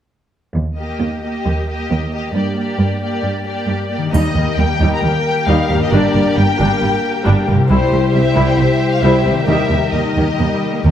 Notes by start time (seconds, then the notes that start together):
0.57 D#2
0.77 A#3 G4 D#5
1.01 D#2
1.23 A#3 G4 D#5
1.46 D#2
1.67 A#3 G4 D#5
1.91 D#2
2.11 A#3 G4 D#5
2.34 G2 A#3 G4 D5
2.55 A#3 G4 D5
2.79 G2
3.00 A#3 G4 D5
3.23 G2
3.45 A#3 G4 D5
3.68 G2
3.90 A#3 G4 D5
3.98 D#3
4.02 D#4
4.06 G4
4.11 D#2 G3 A#3 D#4 G4 A#4 D#5, triangle
4.35 D#2 G3 A#3
4.58 D#2 G3 G5
4.80 D#2 G3 D#4
4.95 A#5
5.03 D#2 G3 A#3 G5
5.47 D#2 G3 D#4 F5
5.69 D#2 G3 A#3
5.75 G2
5.79 D4
5.83 G4 D#5
5.88 A#4
5.92 G1 G2 G3 D4 D5
6.14 G1 G2 G3 A#3
6.35 G1 G2 G3 G5
6.57 G1 G2 G3 D4
6.80 G1 G2 G3 A#3
7.23 G1 G2 G3 D4
7.47 G1 G2 G3 A#3
7.52 C3
7.57 E4
7.61 G4
7.65 G3 E4 C5
7.70 C2 G3 E4 G4 C5
7.91 C2 G3 C4
8.11 C2 G3 E5
8.34 C2 G3 E4
8.48 G5
8.56 C2 G3 C4 E5
8.92 F5
9.02 C2 G3 E4 E5
9.25 C2 G3 C4
9.30 D#3
9.34 A#3 E5
9.39 G4
9.44 D#2 A#4 E5
9.48 D#2 D#3 G3 D#4 A#4
9.69 D#2 G3 A#3
9.92 D#2 D#3 D#5
10.16 D#2
10.38 D#2 G3
10.74 A#3
10.84 D#2 G3